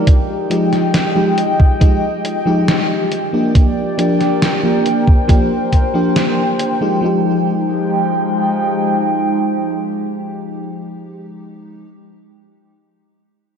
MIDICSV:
0, 0, Header, 1, 4, 480
1, 0, Start_track
1, 0, Tempo, 869565
1, 40, Time_signature, 4, 2, 24, 8
1, 7491, End_track
2, 0, Start_track
2, 0, Title_t, "Ambient pad"
2, 0, Program_c, 0, 92
2, 0, Note_on_c, 0, 65, 87
2, 39, Note_on_c, 0, 56, 75
2, 40, Note_on_c, 0, 75, 72
2, 41, Note_on_c, 0, 79, 88
2, 1703, Note_off_c, 0, 56, 0
2, 1703, Note_off_c, 0, 75, 0
2, 1704, Note_off_c, 0, 79, 0
2, 1720, Note_on_c, 0, 79, 90
2, 1722, Note_on_c, 0, 70, 75
2, 1722, Note_on_c, 0, 74, 75
2, 2672, Note_off_c, 0, 74, 0
2, 2685, Note_on_c, 0, 72, 79
2, 3858, Note_off_c, 0, 79, 0
2, 3859, Note_off_c, 0, 65, 0
2, 3859, Note_off_c, 0, 70, 0
2, 3870, Note_off_c, 0, 72, 0
2, 3883, Note_on_c, 0, 56, 75
2, 3884, Note_on_c, 0, 53, 83
2, 3884, Note_on_c, 0, 79, 91
2, 3885, Note_on_c, 0, 63, 75
2, 6221, Note_off_c, 0, 56, 0
2, 6221, Note_off_c, 0, 79, 0
2, 6222, Note_off_c, 0, 53, 0
2, 6222, Note_off_c, 0, 63, 0
2, 7491, End_track
3, 0, Start_track
3, 0, Title_t, "FM electric piano"
3, 0, Program_c, 1, 5
3, 0, Note_on_c, 1, 53, 70
3, 0, Note_on_c, 1, 56, 68
3, 0, Note_on_c, 1, 63, 66
3, 0, Note_on_c, 1, 67, 80
3, 250, Note_off_c, 1, 53, 0
3, 251, Note_off_c, 1, 56, 0
3, 253, Note_off_c, 1, 63, 0
3, 254, Note_off_c, 1, 67, 0
3, 275, Note_on_c, 1, 53, 73
3, 277, Note_on_c, 1, 56, 67
3, 280, Note_on_c, 1, 63, 68
3, 283, Note_on_c, 1, 67, 84
3, 610, Note_off_c, 1, 53, 0
3, 611, Note_off_c, 1, 56, 0
3, 612, Note_off_c, 1, 63, 0
3, 614, Note_off_c, 1, 67, 0
3, 636, Note_on_c, 1, 53, 77
3, 638, Note_on_c, 1, 56, 69
3, 641, Note_on_c, 1, 63, 71
3, 644, Note_on_c, 1, 67, 84
3, 969, Note_off_c, 1, 53, 0
3, 970, Note_off_c, 1, 56, 0
3, 972, Note_off_c, 1, 63, 0
3, 973, Note_off_c, 1, 67, 0
3, 993, Note_on_c, 1, 53, 87
3, 996, Note_on_c, 1, 56, 78
3, 999, Note_on_c, 1, 63, 79
3, 1002, Note_on_c, 1, 67, 93
3, 1117, Note_off_c, 1, 53, 0
3, 1119, Note_off_c, 1, 56, 0
3, 1120, Note_off_c, 1, 63, 0
3, 1121, Note_off_c, 1, 67, 0
3, 1353, Note_on_c, 1, 53, 84
3, 1358, Note_on_c, 1, 56, 76
3, 1361, Note_on_c, 1, 63, 80
3, 1363, Note_on_c, 1, 67, 94
3, 1702, Note_off_c, 1, 53, 0
3, 1704, Note_off_c, 1, 56, 0
3, 1706, Note_off_c, 1, 63, 0
3, 1707, Note_off_c, 1, 67, 0
3, 1835, Note_on_c, 1, 53, 69
3, 1837, Note_on_c, 1, 58, 67
3, 1841, Note_on_c, 1, 62, 68
3, 1842, Note_on_c, 1, 67, 81
3, 2168, Note_off_c, 1, 53, 0
3, 2170, Note_off_c, 1, 58, 0
3, 2172, Note_off_c, 1, 62, 0
3, 2172, Note_off_c, 1, 67, 0
3, 2193, Note_on_c, 1, 53, 75
3, 2196, Note_on_c, 1, 58, 65
3, 2198, Note_on_c, 1, 62, 68
3, 2202, Note_on_c, 1, 67, 79
3, 2529, Note_off_c, 1, 53, 0
3, 2530, Note_off_c, 1, 58, 0
3, 2531, Note_off_c, 1, 62, 0
3, 2533, Note_off_c, 1, 67, 0
3, 2555, Note_on_c, 1, 53, 74
3, 2559, Note_on_c, 1, 58, 71
3, 2560, Note_on_c, 1, 62, 68
3, 2564, Note_on_c, 1, 67, 79
3, 2888, Note_off_c, 1, 53, 0
3, 2890, Note_off_c, 1, 58, 0
3, 2891, Note_off_c, 1, 62, 0
3, 2893, Note_off_c, 1, 67, 0
3, 2913, Note_on_c, 1, 53, 88
3, 2915, Note_on_c, 1, 58, 79
3, 2918, Note_on_c, 1, 62, 80
3, 2921, Note_on_c, 1, 67, 91
3, 3037, Note_off_c, 1, 53, 0
3, 3038, Note_off_c, 1, 58, 0
3, 3040, Note_off_c, 1, 62, 0
3, 3041, Note_off_c, 1, 67, 0
3, 3276, Note_on_c, 1, 53, 81
3, 3278, Note_on_c, 1, 58, 75
3, 3282, Note_on_c, 1, 62, 75
3, 3285, Note_on_c, 1, 67, 90
3, 3730, Note_off_c, 1, 53, 0
3, 3731, Note_off_c, 1, 58, 0
3, 3733, Note_off_c, 1, 62, 0
3, 3734, Note_off_c, 1, 67, 0
3, 3757, Note_on_c, 1, 53, 70
3, 3760, Note_on_c, 1, 56, 65
3, 3762, Note_on_c, 1, 63, 66
3, 3765, Note_on_c, 1, 67, 80
3, 3863, Note_off_c, 1, 53, 0
3, 3869, Note_on_c, 1, 53, 79
3, 3872, Note_off_c, 1, 56, 0
3, 3879, Note_off_c, 1, 63, 0
3, 3879, Note_on_c, 1, 56, 71
3, 3886, Note_on_c, 1, 63, 71
3, 3889, Note_off_c, 1, 67, 0
3, 3895, Note_on_c, 1, 67, 87
3, 6537, Note_off_c, 1, 53, 0
3, 6547, Note_off_c, 1, 56, 0
3, 6554, Note_off_c, 1, 63, 0
3, 6563, Note_off_c, 1, 67, 0
3, 7491, End_track
4, 0, Start_track
4, 0, Title_t, "Drums"
4, 40, Note_on_c, 9, 36, 106
4, 40, Note_on_c, 9, 42, 71
4, 95, Note_off_c, 9, 36, 0
4, 95, Note_off_c, 9, 42, 0
4, 281, Note_on_c, 9, 42, 65
4, 336, Note_off_c, 9, 42, 0
4, 401, Note_on_c, 9, 38, 31
4, 401, Note_on_c, 9, 42, 32
4, 456, Note_off_c, 9, 38, 0
4, 456, Note_off_c, 9, 42, 0
4, 520, Note_on_c, 9, 38, 103
4, 520, Note_on_c, 9, 42, 72
4, 575, Note_off_c, 9, 38, 0
4, 575, Note_off_c, 9, 42, 0
4, 760, Note_on_c, 9, 42, 61
4, 816, Note_off_c, 9, 42, 0
4, 882, Note_on_c, 9, 36, 94
4, 937, Note_off_c, 9, 36, 0
4, 1000, Note_on_c, 9, 36, 109
4, 1001, Note_on_c, 9, 42, 73
4, 1055, Note_off_c, 9, 36, 0
4, 1056, Note_off_c, 9, 42, 0
4, 1241, Note_on_c, 9, 42, 57
4, 1296, Note_off_c, 9, 42, 0
4, 1480, Note_on_c, 9, 38, 110
4, 1480, Note_on_c, 9, 42, 72
4, 1536, Note_off_c, 9, 38, 0
4, 1536, Note_off_c, 9, 42, 0
4, 1719, Note_on_c, 9, 42, 59
4, 1775, Note_off_c, 9, 42, 0
4, 1960, Note_on_c, 9, 36, 107
4, 1960, Note_on_c, 9, 42, 74
4, 2015, Note_off_c, 9, 36, 0
4, 2015, Note_off_c, 9, 42, 0
4, 2201, Note_on_c, 9, 42, 64
4, 2256, Note_off_c, 9, 42, 0
4, 2321, Note_on_c, 9, 38, 34
4, 2321, Note_on_c, 9, 42, 35
4, 2376, Note_off_c, 9, 38, 0
4, 2376, Note_off_c, 9, 42, 0
4, 2441, Note_on_c, 9, 38, 104
4, 2441, Note_on_c, 9, 42, 76
4, 2496, Note_off_c, 9, 38, 0
4, 2496, Note_off_c, 9, 42, 0
4, 2681, Note_on_c, 9, 42, 61
4, 2736, Note_off_c, 9, 42, 0
4, 2801, Note_on_c, 9, 36, 92
4, 2856, Note_off_c, 9, 36, 0
4, 2920, Note_on_c, 9, 36, 113
4, 2921, Note_on_c, 9, 42, 74
4, 2975, Note_off_c, 9, 36, 0
4, 2977, Note_off_c, 9, 42, 0
4, 3160, Note_on_c, 9, 36, 57
4, 3161, Note_on_c, 9, 42, 60
4, 3215, Note_off_c, 9, 36, 0
4, 3216, Note_off_c, 9, 42, 0
4, 3400, Note_on_c, 9, 38, 104
4, 3400, Note_on_c, 9, 42, 75
4, 3455, Note_off_c, 9, 38, 0
4, 3455, Note_off_c, 9, 42, 0
4, 3640, Note_on_c, 9, 42, 64
4, 3695, Note_off_c, 9, 42, 0
4, 7491, End_track
0, 0, End_of_file